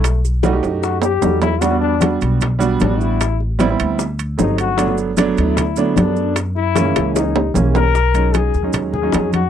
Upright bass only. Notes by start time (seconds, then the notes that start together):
Already playing: B1
0.63 F#2
1.23 E2
2.22 B1
2.81 A1
3.80 D2
4.39 G1
5.38 D2
5.97 F#2
6.96 C#2
7.56 B1
8.54 D#2
9.14 F2